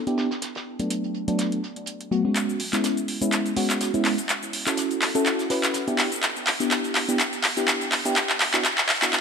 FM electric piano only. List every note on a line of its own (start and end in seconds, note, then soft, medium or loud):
0.07 0.28 B3 medium
0.07 0.28 D4 medium
0.07 0.28 E4 medium
0.07 0.28 G4 medium
0.79 1.25 F#3 medium
0.79 1.25 A3 medium
0.79 1.25 B3 medium
0.79 1.25 D4 medium
1.28 1.60 F#3 medium
1.28 1.60 A3 medium
1.28 1.60 B3 medium
1.28 1.60 D4 medium
2.11 2.23 F#3 medium
2.11 2.23 A3 medium
2.11 2.23 B3 medium
2.11 2.23 F#4 medium
2.25 2.60 G#3 medium
2.25 2.60 B3 medium
2.25 2.60 C#4 medium
2.25 2.60 F#4 medium
2.73 3.18 G#3 medium
2.73 3.18 B3 medium
2.73 3.18 C#4 medium
2.73 3.18 E4 medium
3.21 3.54 G#3 medium
3.21 3.54 B3 medium
3.21 3.54 C#4 medium
3.21 3.54 E4 loud
3.56 3.91 G#3 medium
3.56 3.91 B3 medium
3.56 3.91 C#4 medium
3.56 3.91 F#4 medium
3.94 4.15 G#3 medium
3.94 4.15 B3 medium
3.94 4.15 C#4 medium
3.94 4.15 E4 medium
4.66 5.12 C#4 medium
4.66 5.12 E4 medium
4.66 5.12 F#4 medium
4.66 5.12 A4 medium
5.15 5.47 C#4 medium
5.15 5.47 E4 medium
5.15 5.47 F#4 medium
5.15 5.48 A4 loud
5.50 5.84 C#4 medium
5.50 5.84 E4 medium
5.50 5.84 F#4 medium
5.50 5.84 B4 loud
5.87 6.09 B3 medium
5.87 6.09 D4 medium
5.87 6.09 E4 medium
5.87 6.09 G4 medium
6.60 7.05 B3 medium
6.60 7.05 D4 medium
6.60 7.05 E4 medium
6.60 7.05 G4 medium
7.08 7.18 B3 medium
7.08 7.18 D4 medium
7.08 7.18 E4 medium
7.08 7.18 G4 medium
7.57 8.02 B3 medium
7.57 8.02 D4 medium
7.57 8.02 E4 medium
7.57 8.02 G4 medium
8.05 8.14 B3 medium
8.05 8.14 D4 medium
8.05 8.15 E4 medium
8.05 8.15 G4 loud
8.54 8.63 B3 medium
8.54 8.63 D4 medium
8.54 8.63 E4 medium
8.54 8.63 F#4 medium
9.02 9.11 B3 medium
9.02 9.11 D4 medium
9.02 9.11 E4 medium
9.02 9.11 F#4 medium
9.13 9.21 B3 medium
9.13 9.21 D4 medium
9.13 9.21 E4 medium
9.13 9.21 F#4 medium